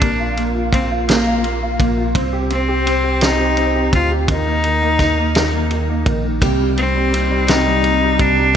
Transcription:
Already playing: D4
0.01 A#1 A#3, kick, ride
0.19 F4
0.37 A#3, ride
0.55 F4
0.73 A#3 C4, kick, ride
0.90 F4
1.08 A#3, snare, ride
1.26 F4
1.44 A#3, ride
1.62 F4
1.79 A#1 A#3, kick, ride
1.97 F4
2.15 C2 C4, kick, ride
2.33 G4
2.50 C4, ride
2.68 G4
2.86 C4, ride
3.03 G4
3.21 C4 D#4, snare, ride
3.39 G4
3.57 C4, ride
3.75 G4
3.92 D2 C4 F4, kick, ride
4.11 G4
4.28 D#2 D#3 D#4, kick, ride
4.47 A#3
4.64 D#3, ride
4.82 A#3
4.99 D#3, kick, snare, ride
5.18 A#3
5.35 D#3, snare, ride
5.53 A#3
5.71 D#3, ride
5.89 A#3
6.06 A#1 D#3, kick, ride
6.24 A#3
6.41 C2 C3 G3 A#3 D#4 G4, kick, ride
6.60 G3
6.76 C3 A#3 C4 D#4 G4, ride
6.95 G3
7.11 C3 G3 A#3 D#4 G4, ride
7.30 G3
7.47 C3 G3 A#3 D#4 G4, snare, ride
7.66 G3
7.82 C3 G3 A#3 D#4 G4, ride
8.02 G3
8.18 C2 C3 A#3 D4 G4, kick, ride
8.36 G3
8.53 A#2 D3

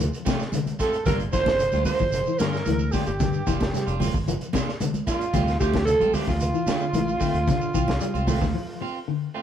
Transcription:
0.00 F3, closed hi-hat, shekere
0.14 closed hi-hat, shekere
0.25 C3 A3 C4 F4, kick, snare, closed hi-hat, high conga, shekere
0.39 snare, shekere
0.52 D3, closed hi-hat, high conga, shekere
0.66 closed hi-hat, high conga, shekere
0.79 A3 C4 F4 A4, kick, snare, closed hi-hat, high conga, shekere
0.93 closed hi-hat, shekere
1.06 G1 G3 A#3 D4 F4 A#4, kick, snare, closed hi-hat, low conga, shekere
1.19 closed hi-hat, shekere
1.33 G1 F3 A#3 D4 F4 C5, kick, snare, closed hi-hat, shekere
1.46 F3, kick, snare, closed hi-hat, high conga, shekere
1.59 closed hi-hat, shekere
1.72 D2 G3 D4 F4, closed hi-hat, high conga, shekere
1.85 A#3 D4 F4 C5, open hi-hat, high conga, low conga, shekere
1.99 G1 F3, kick, shekere
2.12 closed hi-hat, shekere
2.26 E3, shekere
2.38 G2 D3 A#3 F4 A#4, snare, closed hi-hat, high conga, shekere
2.53 snare, shekere
2.65 D2 E3, closed hi-hat, high conga, shekere
2.79 shekere
2.91 D3 A#3 D4 F4 G4, kick, snare, open hi-hat, high conga, shekere
3.06 G1 G4, closed hi-hat, shekere
3.20 G2 D3, kick, snare, closed hi-hat, low conga, shekere
3.33 shekere
3.47 F1 E3 A#3 D4 F4, kick, snare, closed hi-hat, shekere
3.60 F3, kick, snare, high conga, shekere
3.74 G3, snare, closed hi-hat, shekere
3.87 F1 D4 F4, closed hi-hat, shekere
4.00 F3 A#3 F4, open hi-hat, high conga, low conga, shekere
4.14 G1, kick, low conga, shekere
4.28 F3, closed hi-hat, shekere
4.41 closed hi-hat, shekere
4.53 C3 A#3 D4 F4, kick, snare, closed hi-hat, high conga, shekere
4.69 snare, shekere
4.80 D3, closed hi-hat, high conga, shekere
4.94 closed hi-hat, high conga, shekere
5.06 A#3 D4 F4, kick, snare, closed hi-hat, shekere
5.21 closed hi-hat, shekere
5.33 D2 G3 A3 C4 F4, kick, snare, closed hi-hat, low conga, shekere
5.47 snare, closed hi-hat, shekere
5.60 D2 F3 A3 C4 F4 G4, kick, snare, closed hi-hat, shekere
5.74 F3, kick, snare, closed hi-hat, high conga, shekere
5.85 A4, closed hi-hat, shekere
6.00 A1 G3 C4 F4, closed hi-hat, high conga, shekere
6.13 A3 C4 F4 G4, muted fingered electric bass stroke, open hi-hat, high conga, low conga, shekere
6.27 D2 F3 F4, kick, snare, low conga, shekere
6.40 closed hi-hat, shekere
6.54 E3, shekere
6.66 D3 A3 C4 F4, snare, closed hi-hat, high conga, shekere
6.80 shekere
6.93 A1 E3, closed hi-hat, high conga, shekere
7.08 shekere
7.20 D3 A3 C4, muted clean electric guitar stroke, kick, open hi-hat, shekere
7.34 D2, closed hi-hat, shekere
7.47 D3, kick, snare, closed hi-hat, low conga, shekere
7.61 shekere
7.74 C2 E3 C4 F4, kick, closed hi-hat, shekere
7.88 F3, kick, snare, high conga, shekere
8.01 G3, closed hi-hat, shekere
8.14 C2 C4 F4, closed hi-hat, high conga, shekere
8.27 F3 A3 C4 F4, open hi-hat, high conga, low conga, shekere
8.41 D2 D3, kick, snare, low conga, shekere
8.55 F3
8.81 C4 F4, muted clean electric guitar stroke
9.08 D3
9.34 A3 C4 F4

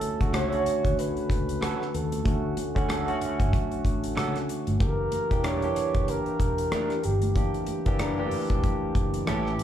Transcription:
Already playing: D3 A3 C#4 F#4 A4
0.01 closed hi-hat, muted conga
0.20 C#2 D3 A3 C#4 F#4, kick, closed hi-hat
0.33 A3 C#4 F#4 A4 C#5, cross-stick, closed hi-hat, high conga
0.51 D3 A3 C#4 F#4, closed hi-hat
0.66 muted fingered electric bass stroke, closed hi-hat
0.85 D2, kick, closed hi-hat
0.98 B4, closed hi-hat, muted conga
1.17 muted fingered electric bass stroke, closed hi-hat
1.30 C#2, kick, closed hi-hat
1.49 closed hi-hat
1.61 A3 C#4 F#4 A4, cross-stick, closed hi-hat, high conga
1.82 cross-stick
1.94 D#2 A4, closed hi-hat
2.12 closed hi-hat, high conga
2.25 D2 D3 A3 C#4 F#4, kick, closed hi-hat, muted conga
2.57 closed hi-hat, muted conga
2.75 D2 D3 A3 C#4 F#4, kick, closed hi-hat
2.89 A3 C#4 F#4 A4, cross-stick, closed hi-hat, high conga
3.06 D3 A3 C#4 F#4, closed hi-hat
3.21 muted fingered electric bass stroke, closed hi-hat
3.40 G1, kick, closed hi-hat
3.53 kick, closed hi-hat, low conga
3.71 muted fingered electric bass stroke, closed hi-hat
3.85 A1, kick, closed hi-hat
4.04 closed hi-hat
4.16 C#2 A3 C#4 F#4 A4, cross-stick, closed hi-hat, high conga
4.35 cross-stick, closed hi-hat
4.49 closed hi-hat
4.67 G1, closed hi-hat, high conga
4.79 E3 A#3 D4 G4 A#4, kick, closed hi-hat, muted conga
5.12 closed hi-hat, muted conga
5.30 E1 E3 A#3 D4 G4, kick, closed hi-hat
5.44 G3 D4 E4 A#4 C#5, cross-stick, closed hi-hat, high conga
5.62 E3 A#3 D4 G4, closed hi-hat
5.76 muted fingered electric bass stroke, cross-stick, closed hi-hat
5.94 F#1, kick, closed hi-hat
6.08 A#4, closed hi-hat, muted conga
6.26 muted fingered electric bass stroke, closed hi-hat
6.40 E1, kick, closed hi-hat
6.58 closed hi-hat
6.71 G3 D4 E4 A#4, cross-stick, closed hi-hat, high conga
6.90 cross-stick, closed hi-hat
7.03 G1 G4, closed hi-hat
7.22 closed hi-hat, high conga
7.35 F#1 E3 A#3 D4 G4, kick, closed hi-hat, muted conga
7.54 closed hi-hat
7.67 closed hi-hat, muted conga
7.86 F#1 E3 A#3 D4 G4, kick, closed hi-hat
7.99 G3 D4 E4 A#4, cross-stick, closed hi-hat, high conga
8.18 E3 A3 D4 G4
8.25 A#3
8.31 muted fingered electric bass stroke, open hi-hat
8.50 E1, kick, closed hi-hat
8.63 kick, closed hi-hat, muted conga, low conga
8.83 muted fingered electric bass stroke
8.95 F#1, kick, closed hi-hat
9.14 closed hi-hat
9.26 A1 E3 G3 A3 C#4 E4 G4 A4, cross-stick, closed hi-hat, high conga
9.47 cross-stick
9.59 closed hi-hat

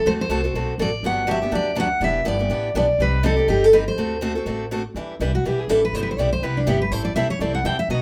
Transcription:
0.05 D2 D3 A3 C4 F#4 A4 C5
0.21 C5
0.29 C2 D3 A3 C4 F#4 A4
0.45 C4 F#4
0.54 B1 D3 A3 C4 F#4 A4
0.78 A1 D3 A3 C4 F#4 A4 D5
1.03 G1 D3 F#3 B3 D4 G4 F#5
1.27 D3 F#3 B3 D4 G4
1.31 E5
1.42 B3 D4 G4
1.52 D2 D3 F#3 B3 D4 G4 D5
1.75 D3 F#3 B3 D4 G4
1.80 F#5
2.00 E1 E3 B3 D4 G4 E5
2.24 G1 E3 B3 D4 G4 D5
2.39 B3 D4 G4
2.49 A1 E3 B3 D4 G4
2.74 B1 E3 B3 D4 G4 D5
2.98 C2 C3 G3 C4 D#4 G4 B4
3.23 C3 G3 C4 D#4 G4 A4
3.37 C4 D#4 G4
3.48 G1 C3 G3 C4 D#4 G4
3.64 A4
3.73 C3 G3 C4 D#4 G4 B4
3.88 C5
3.96 D2 D3 A3 C4 F#4 A4
4.21 D3 A3 C4 F#4 A4
4.35 C4 F#4 A4
4.46 A1 D3 A3 C4 F#4 A4
4.71 D3 A3 C4 F#4 A4
4.94 E2 E3 G3 D4 E4 B4
5.20 C2 E3 G3 D4 E4 B4
5.35 F#4
5.44 B1 E3 G3 D4 E4 G4 B4
5.60 G#4
5.68 A1 E3 G3 D4 E4 A4 B4
5.85 B4
5.93 G1 C3 G3 B3 E4 G4 C5
6.03 B4
6.11 C5
6.17 B1 C3 G3 B3 E4 G4 D5
6.33 C5
6.42 C2 C3 G3 B3 E4 G4 B4
6.57 D4
6.66 G1 C3 G3 B3 E4 G4
6.82 B4
6.91 A1 E3 G3 C4 E4 A4 C5
7.05 D5
7.15 B1 E3 G3 C4 E4 A4 E5
7.29 C#5, muted upright bass stroke
7.39 C2 E3 G3 C4 E4 A4 D5
7.55 F#5
7.64 E2 E3 G3 C4 E4 A4 G5
7.79 E5
7.89 B2 F#3 B3 D#4 F#4 D#5

